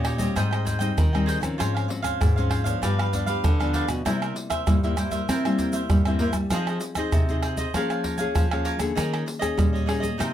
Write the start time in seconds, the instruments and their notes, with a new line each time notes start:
Already playing: nylon-string guitar A#2 A#3 C#4 G4
0.04 cavaquinho D#4 G4 C#5 D#5, pandeiro, tamborim
0.18 nylon-string guitar G3 C4 D#4, cavaquinho G4 C#5 D#5, pandeiro, shaker, surdo
0.36 nylon-string guitar G#2, cavaquinho G#4 C5 D#5 G5, pandeiro, tamborim, shaker, surdo
0.51 cavaquinho C5 D#5 G5, pandeiro, tamborim, shaker
0.65 cavaquinho G#4 C5 D#5 G5, pandeiro, shaker, surdo
0.79 nylon-string guitar G3 C4 D#4, cavaquinho C5 D#5 G5, pandeiro, shaker
0.97 nylon-string guitar D#3, pandeiro, tamborim, shaker, surdo
1.13 nylon-string guitar G3 C4 D#4, cavaquinho C5 D#5 G5, pandeiro, tamborim, shaker
1.26 cavaquinho G#4 C5 D#5 G5, pandeiro, shaker
1.41 nylon-string guitar D#3 F3 C4 C#4, muted cavaquinho stroke, pandeiro, tamborim, shaker, surdo
1.58 nylon-string guitar G#2, cavaquinho F4 C5 C#5 F5, pandeiro, tamborim, shaker, surdo
1.74 cavaquinho C5 C#5 F5, pandeiro, tamborim, shaker
1.88 nylon-string guitar F3 C4 C#4, muted cavaquinho stroke, pandeiro
2.02 cavaquinho C5 C#5 F5, pandeiro, tamborim, shaker, surdo
2.21 nylon-string guitar G#2, pandeiro, tamborim, shaker, surdo
2.36 nylon-string guitar F3 C4 C#4, cavaquinho C5 C#5 F5, pandeiro, shaker
2.49 cavaquinho F4 C5 C#5 F5, pandeiro, tamborim
2.64 nylon-string guitar F3 B3 D4, cavaquinho C5 C#5 F5, pandeiro, shaker, surdo
2.82 nylon-string guitar G2, cavaquinho D4 G4 B4 F5, pandeiro, tamborim, shaker, surdo
2.98 cavaquinho G4 B4 F5, pandeiro, tamborim, shaker
3.13 nylon-string guitar F3 B3 D4, cavaquinho D4 G4 B4 F5, pandeiro, shaker, surdo
3.26 cavaquinho G4 B4 F5, pandeiro, shaker
3.44 nylon-string guitar D3, pandeiro, tamborim, shaker, surdo
3.60 nylon-string guitar F3 B3 D4, cavaquinho G4 B4 F5, pandeiro, tamborim, shaker
3.73 cavaquinho D4 G4 B4 F5, pandeiro, surdo
3.88 nylon-string guitar B2, muted cavaquinho stroke, pandeiro, tamborim, shaker, surdo
4.05 nylon-string guitar C3 G3 A#3 E4, cavaquinho E4 A#4 C5 E5, pandeiro, tamborim, shaker, surdo
4.21 cavaquinho A#4 C5 E5, pandeiro, tamborim, shaker
4.36 muted cavaquinho stroke, pandeiro
4.50 cavaquinho A#4 C5 E5, pandeiro, tamborim, shaker, surdo
4.67 nylon-string guitar G2 G3 A#3 E4, pandeiro, tamborim, shaker, surdo
4.83 nylon-string guitar G3 A#3 E4, cavaquinho A#4 C5 E5, pandeiro, shaker
4.97 nylon-string guitar G3 A#3 E4, cavaquinho E4 A#4 C5 E5, pandeiro, tamborim, shaker
5.11 cavaquinho A#4 C5 E5, pandeiro, shaker, surdo
5.29 nylon-string guitar C3 C4, cavaquinho E4 A#4 C5 E5, pandeiro, tamborim, shaker, surdo
5.45 nylon-string guitar G3 A#3 E4, cavaquinho A#4 C5 E5, pandeiro, tamborim, shaker
5.59 cavaquinho E4 A#4 C5 E5, pandeiro, shaker, surdo
5.73 cavaquinho A#4 C5 E5, pandeiro, shaker
5.89 nylon-string guitar G2 G3, pandeiro, tamborim, shaker, surdo
6.05 nylon-string guitar G3 A#3 C4 E4, cavaquinho A#4 C5 E5, pandeiro, tamborim, shaker
6.19 nylon-string guitar A#3, cavaquinho E4 A#4 C5 E5, pandeiro
6.33 nylon-string guitar G3, muted cavaquinho stroke, pandeiro, tamborim, shaker, surdo
6.50 nylon-string guitar F3 C4 D#4 G#4, cavaquinho F4 G#4 C5, pandeiro, tamborim, shaker, surdo
6.55 cavaquinho D#5
6.67 cavaquinho G#4 C5 D#5, pandeiro, tamborim, shaker
6.81 muted cavaquinho stroke, pandeiro, shaker
6.95 nylon-string guitar C4 D#4 G#4, cavaquinho G#4 C5 D#5, pandeiro, tamborim, shaker, surdo
7.12 nylon-string guitar C3, pandeiro, tamborim, shaker, surdo
7.29 nylon-string guitar C4 D#4 G#4, cavaquinho G#4 C5 D#5, pandeiro, shaker
7.43 cavaquinho F4 G#4 C5 D#5, pandeiro, tamborim
7.57 cavaquinho G#4 C5 D#5, pandeiro, shaker, surdo
7.74 nylon-string guitar F3 A#3 C#4 G#4, cavaquinho A#4 C#5 F5 G#5, pandeiro, tamborim, shaker, surdo
7.90 cavaquinho C#5 F5 G#5, pandeiro, tamborim, shaker
8.03 cavaquinho A#4 C#5 F5 G#5, pandeiro, surdo
8.18 nylon-string guitar A#3 C#4 G#4, cavaquinho C#5 F5 G#5, pandeiro, shaker
8.36 nylon-string guitar F3, pandeiro, tamborim, shaker, surdo
8.51 nylon-string guitar A#3 C#4 G#4, cavaquinho C#5 F5 G#5, pandeiro, tamborim, shaker
8.65 cavaquinho A#4 C#5 F5 G#5, pandeiro
8.79 nylon-string guitar D3 A#3 C#4 G#4, muted cavaquinho stroke, pandeiro, tamborim, shaker, surdo
8.95 nylon-string guitar D#3, cavaquinho D#4 G#4 C#5 D#5, pandeiro, tamborim, shaker, surdo
9.12 cavaquinho G#4 C#5 D#5, pandeiro, tamborim, shaker
9.26 muted cavaquinho stroke, pandeiro
9.39 nylon-string guitar A#3 C#4 G#4, cavaquinho G#4 C#5 D#5, pandeiro, tamborim, shaker, surdo
9.57 nylon-string guitar A#2 G3, pandeiro, tamborim, shaker, surdo
9.73 cavaquinho G#4 C#5 D#5, pandeiro, shaker
9.86 nylon-string guitar A#3 C#4 G#4, cavaquinho D#4 G#4 C#5 D#5, pandeiro, tamborim
10.00 cavaquinho G#4 C#5 D#5, pandeiro, shaker, surdo
10.18 nylon-string guitar C3 A#3 D#4 G4, cavaquinho D#4 A#4 C5 D#5, pandeiro, tamborim, shaker, surdo